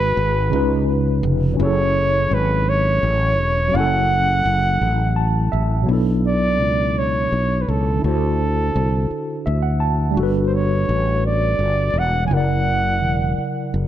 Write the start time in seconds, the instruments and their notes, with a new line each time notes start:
Already playing: fretless electric bass G#1, tine electric piano G#3 D#4 F#4 G#4 B4, flugelhorn B4
0.17 fretless electric bass G#1
0.50 fretless electric bass C#2, tine electric piano C#3 C#4 D#4
0.54 tine electric piano F4 B4
1.23 fretless electric bass F1
1.54 tine electric piano F#3 C#4
1.59 fretless electric bass F#1, tine electric piano E4 G#4, flugelhorn C#5
1.65 tine electric piano A4
2.31 fretless electric bass G#1, flugelhorn B4
2.69 flugelhorn C#5
3.03 fretless electric bass A1
3.39 fretless electric bass E1
3.68 tine electric piano F#3 C#4
3.74 fretless electric bass F#1, tine electric piano E4 G#5, flugelhorn F#5
3.80 tine electric piano A4
4.45 fretless electric bass F#1
4.81 fretless electric bass A1
5.16 tine electric piano A5
5.52 fretless electric bass A1, tine electric piano E5
5.82 tine electric piano B2 F#3
5.86 fretless electric bass B1, tine electric piano B3 D4
5.91 tine electric piano E4 A4
6.28 flugelhorn D5
6.60 fretless electric bass C#2
6.98 flugelhorn C#5
7.32 fretless electric bass B1
7.62 flugelhorn B4
7.68 fretless electric bass C#2, flugelhorn A4
7.96 tine electric piano D3 D4
8.02 fretless electric bass D2, tine electric piano E4 F#4, flugelhorn A4
8.08 tine electric piano C5
8.76 fretless electric bass C2
9.11 muted fretless electric bass stroke
9.46 fretless electric bass D2, tine electric piano E5
9.63 tine electric piano F#5
9.80 tine electric piano A5
10.11 tine electric piano G3 D4
10.17 fretless electric bass G1, tine electric piano F#4 A4
10.23 tine electric piano B4
10.47 flugelhorn C5
10.55 flugelhorn C#5
10.89 fretless electric bass A1
11.26 flugelhorn D5
11.59 fretless electric bass G1
11.94 fretless electric bass E1
11.99 flugelhorn F#5
12.25 tine electric piano C#3 F#3, flugelhorn G#5
12.31 fretless electric bass F#1, tine electric piano E4 A#4, flugelhorn F#5
12.37 tine electric piano D5
13.02 fretless electric bass E1
13.38 muted fretless electric bass stroke
13.74 fretless electric bass F#1